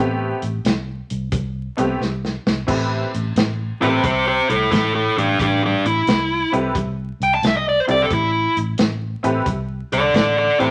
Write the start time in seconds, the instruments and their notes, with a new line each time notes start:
Already playing: fingered electric bass A1, honky-tonk piano A3 B3 C4 G4
0.42 fingered electric bass A1, closed hi-hat
0.65 fingered electric bass C2, snare, closed hi-hat
1.10 fingered electric bass C2, closed hi-hat
1.32 fingered electric bass C2, kick, closed hi-hat
1.77 fingered electric bass C2, honky-tonk piano A3 B3 C4 G4, closed hi-hat
2.01 fingered electric bass C2, snare
2.25 snare
2.46 fingered electric bass C2, snare
2.67 fingered electric bass A1, honky-tonk piano C4 E4 G4 A4 B4, kick, crash
3.14 fingered electric bass A1, closed hi-hat
3.36 fingered electric bass A1, snare, closed hi-hat
3.81 fingered electric bass A1, honky-tonk piano C4 E4 G4 A4 B4, lead electric guitar G4 C5, closed hi-hat
4.04 fingered electric bass C2, lead electric guitar G4 C5, kick, closed hi-hat
4.27 lead electric guitar G4 C5
4.49 fingered electric bass C2, lead electric guitar E4 A4, closed hi-hat
4.71 fingered electric bass A1, lead electric guitar E4 A4, kick, snare, closed hi-hat
4.94 lead electric guitar E4 A4
5.17 fingered electric bass A1, lead electric guitar D4 G4, closed hi-hat
5.39 fingered electric bass A1, lead electric guitar D4 G4, kick, closed hi-hat
5.66 lead electric guitar D4 G4
5.85 fingered electric bass A1, lead electric guitar E4, closed hi-hat
6.07 fingered electric bass C2, snare, closed hi-hat
6.52 fingered electric bass C2, honky-tonk piano C4 E4 G4 A4 B4, closed hi-hat
6.75 fingered electric bass C2, kick, closed hi-hat
7.20 fingered electric bass C2, lead electric guitar G5, closed hi-hat
7.34 lead electric guitar A5
7.42 fingered electric bass C2, snare, closed hi-hat
7.47 lead electric guitar E5
7.57 lead electric guitar D#5
7.69 lead electric guitar D5
7.80 lead electric guitar C5
7.87 fingered electric bass C2, honky-tonk piano C4 E4 G4 A4 D5, lead electric guitar D5, closed hi-hat
8.02 lead electric guitar A4
8.10 fingered electric bass A1, lead electric guitar E4, kick, closed hi-hat
8.57 fingered electric bass A1, closed hi-hat
8.78 fingered electric bass A1, snare, closed hi-hat
9.23 fingered electric bass A1, honky-tonk piano C4 E4 G4 A4 B4, closed hi-hat
9.46 fingered electric bass C2, kick, closed hi-hat
9.92 fingered electric bass C2, lead electric guitar A4 D5, closed hi-hat
10.14 fingered electric bass A1, lead electric guitar A4 D5, kick, snare, closed hi-hat
10.39 lead electric guitar A4 D5
10.58 fingered electric bass A1, honky-tonk piano C4 E4 G4 A4 B4, lead electric guitar G4 C5, closed hi-hat